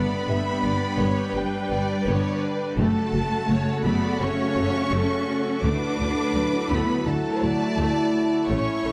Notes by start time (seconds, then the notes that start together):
Already playing: G3 B3 D4 B4 D5 G5 B5
0.28 G1 B3 G4 E5
0.64 G1 B3 D5
0.99 G1 G3 B3 C#5
1.35 G1 G3 B3 G4 B4 G5
1.71 G1 B3 D5
2.06 G1 D3 G3 B3 C#5 D5
2.43 B4
2.78 F#1 C#3 F#3 A3 F#4 A4 F#5 A5
3.14 F#1 A3 F#4
3.49 F#1 A3 C#5
3.85 F#1 F#3 A3 B3 D5 B5
4.21 F#1 A3 C#4 F#4 C#5 C#6
4.56 F#1 A3
4.92 F#1 F#3 A3 A4
5.29 A4
5.63 D2 D3 F#3 A3 D4 E4 B4 D6
5.99 D2 A3 D4
6.35 D2 F#3 A3
6.70 D2 D3 A3 B3 B5
7.06 D2 A3 D4 A4 A5
7.42 D2 F#3 A3 D5
7.77 D2 D3 A3
8.48 A1 A3 C#4 E4 A4 C#5 E5 C#6
8.85 A1 A3 A4